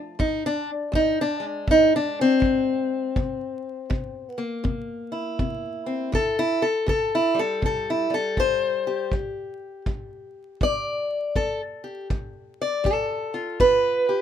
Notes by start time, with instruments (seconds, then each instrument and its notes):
Already playing: steel-string acoustic guitar F2 F3 A3
0.19 steel-string acoustic guitar F2 D#4, kick
0.46 steel-string acoustic guitar D4
0.92 steel-string acoustic guitar F2 D#4, kick
1.21 steel-string acoustic guitar D4
1.40 steel-string acoustic guitar G#3
1.67 steel-string acoustic guitar F2 D#4, kick
1.96 steel-string acoustic guitar D4
2.21 steel-string acoustic guitar C4
2.40 steel-string acoustic guitar F2, kick
3.16 steel-string acoustic guitar C3, kick
3.90 steel-string acoustic guitar C3, kick
4.38 steel-string acoustic guitar A#3
4.64 steel-string acoustic guitar C3, kick
5.12 steel-string acoustic guitar E4
5.39 steel-string acoustic guitar C3, kick
5.86 steel-string acoustic guitar C4
6.12 steel-string acoustic guitar C3 A4, kick
6.39 steel-string acoustic guitar E4
6.62 steel-string acoustic guitar A4
6.86 steel-string acoustic guitar C3 A4, kick
7.15 steel-string acoustic guitar E4
7.34 steel-string acoustic guitar G3
7.39 steel-string acoustic guitar A4
7.62 steel-string acoustic guitar C3 A4, kick
7.90 steel-string acoustic guitar E4
8.10 steel-string acoustic guitar G3 A4
8.37 steel-string acoustic guitar C3 C5, kick
8.87 steel-string acoustic guitar G4
9.12 steel-string acoustic guitar G3, kick
9.86 steel-string acoustic guitar G3, kick
10.61 steel-string acoustic guitar G3 D5, kick
11.36 steel-string acoustic guitar G3 A4, kick
11.84 steel-string acoustic guitar G4
12.10 steel-string acoustic guitar G3, kick
12.62 steel-string acoustic guitar D5
12.84 steel-string acoustic guitar G3 A4, kick
13.34 steel-string acoustic guitar F4
13.60 steel-string acoustic guitar G3 B4, kick
14.09 steel-string acoustic guitar G4